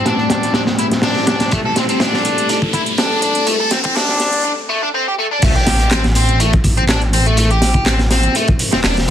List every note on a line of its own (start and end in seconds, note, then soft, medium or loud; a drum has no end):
0.00 4.41 A3 medium
0.00 4.41 E4 medium
0.00 4.41 G4 medium
0.00 1.49 B4 medium
0.00 4.41 C5 medium
0.00 riser medium
0.06 0.53 D4 loud
0.06 snare soft
0.06 closed hi-hat medium
0.06 closed hi-hat soft
0.19 closed hi-hat soft
0.30 snare loud
0.30 closed hi-hat medium
0.42 snare soft
0.42 closed hi-hat soft
0.54 0.61 D4 medium
0.54 snare loud
0.54 closed hi-hat medium
0.54 closed hi-hat soft
0.67 snare loud
0.67 closed hi-hat medium
0.79 0.86 E4 medium
0.79 closed hi-hat medium
0.91 snare medium
0.91 closed hi-hat soft
1.02 1.26 D4 loud
1.02 snare loud
1.02 closed hi-hat soft
1.02 open hi-hat medium
1.16 snare soft
1.27 1.51 D4 medium
1.27 snare loud
1.27 closed hi-hat medium
1.40 snare loud
1.40 closed hi-hat medium
1.40 closed hi-hat soft
1.51 1.59 A3 medium
1.51 4.42 A4 medium
1.51 kick loud
1.51 closed hi-hat soft
1.51 closed hi-hat medium
1.66 1.75 A4 medium
1.76 1.83 C4 medium
1.76 snare medium
1.76 closed hi-hat medium
1.89 2.01 C4 loud
1.89 closed hi-hat soft
2.00 2.49 D4 loud
2.00 snare loud
2.00 closed hi-hat soft
2.00 closed hi-hat medium
2.14 snare medium
2.25 closed hi-hat medium
2.38 closed hi-hat soft
2.49 2.57 D4 medium
2.49 closed hi-hat soft
2.49 closed hi-hat medium
2.62 kick medium
2.73 2.81 E4 medium
2.73 kick loud
2.73 closed hi-hat medium
2.86 closed hi-hat soft
2.98 3.21 D4 loud
2.98 snare loud
2.98 closed hi-hat soft
2.98 closed hi-hat medium
3.22 3.46 D4 medium
3.22 closed hi-hat medium
3.35 closed hi-hat soft
3.47 3.54 A3 medium
3.47 closed hi-hat soft
3.47 closed hi-hat medium
3.60 3.70 A4 medium
3.71 3.78 C4 medium
3.71 snare soft
3.71 closed hi-hat medium
3.84 3.96 C4 loud
3.84 kick loud
3.84 closed hi-hat soft
3.95 4.44 D4 loud
3.95 snare loud
3.95 closed hi-hat soft
3.95 closed hi-hat medium
4.09 snare soft
4.20 snare soft
4.20 closed hi-hat medium
4.33 closed hi-hat soft
4.45 4.52 D4 medium
4.69 4.81 A3 medium
4.82 4.88 D4 medium
4.94 5.05 C4 medium
5.07 5.13 G4 medium
5.19 5.25 A3 loud
5.31 5.42 D4 medium
5.42 6.58 A1 loud
5.42 5.54 A3 loud
5.42 9.10 A3 medium
5.42 9.10 E4 medium
5.42 9.10 G4 medium
5.42 9.10 B4 medium
5.42 9.10 C5 medium
5.42 kick loud
5.42 closed hi-hat soft
5.42 closed hi-hat medium
5.42 crash medium
5.42 impact medium
5.55 5.90 G4 medium
5.55 closed hi-hat soft
5.66 snare medium
5.66 closed hi-hat medium
5.66 open hi-hat medium
5.80 closed hi-hat soft
5.91 6.04 C4 medium
5.91 snare loud
5.91 clap loud
5.91 closed hi-hat soft
5.91 closed hi-hat medium
6.04 snare soft
6.04 closed hi-hat soft
6.15 6.39 C4 medium
6.15 closed hi-hat medium
6.15 open hi-hat medium
6.29 closed hi-hat soft
6.40 6.51 A3 loud
6.40 closed hi-hat medium
6.40 closed hi-hat soft
6.53 kick loud
6.53 closed hi-hat soft
6.64 8.28 A1 medium
6.64 kick medium
6.64 closed hi-hat medium
6.64 open hi-hat medium
6.78 6.84 C4 medium
6.78 closed hi-hat soft
6.89 7.00 D4 loud
6.89 snare loud
6.89 clap loud
6.89 closed hi-hat medium
6.89 closed hi-hat soft
7.02 closed hi-hat soft
7.13 7.25 C4 medium
7.13 closed hi-hat medium
7.13 open hi-hat medium
7.26 7.37 A3 medium
7.26 closed hi-hat soft
7.37 7.49 A3 loud
7.37 closed hi-hat medium
7.37 closed hi-hat soft
7.50 7.85 G4 medium
7.50 closed hi-hat soft
7.62 snare medium
7.62 closed hi-hat medium
7.62 open hi-hat medium
7.74 kick medium
7.86 7.99 C4 medium
7.86 snare loud
7.86 clap loud
7.86 closed hi-hat medium
7.86 closed hi-hat soft
7.99 snare soft
7.99 closed hi-hat soft
8.11 8.35 C4 medium
8.11 snare medium
8.11 closed hi-hat medium
8.11 open hi-hat medium
8.23 closed hi-hat soft
8.35 8.47 A3 loud
8.35 closed hi-hat soft
8.35 closed hi-hat medium
8.48 kick medium
8.48 closed hi-hat soft
8.59 closed hi-hat medium
8.59 open hi-hat medium
8.72 8.82 E1 soft
8.72 8.79 C4 medium
8.72 snare medium
8.72 closed hi-hat soft
8.84 9.10 E1 loud
8.84 8.95 D4 loud
8.84 snare loud
8.84 clap loud
8.84 closed hi-hat soft
8.84 open hi-hat medium
8.97 snare soft
8.97 closed hi-hat soft